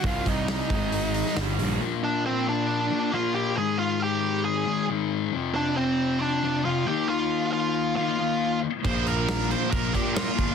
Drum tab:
CC |----------------|----------------|----------------|----------------|
HH |o-o-o-o-o-o-o-o-|----------------|----------------|----------------|
SD |----o------oo---|----------------|----------------|----------------|
BD |o-o---o---------|----------------|----------------|----------------|

CC |----------------|x-x-x-x-x-x-x-x-|
HH |----------------|----------------|
SD |----------------|----oo------o---|
BD |----------------|o-------o-o---o-|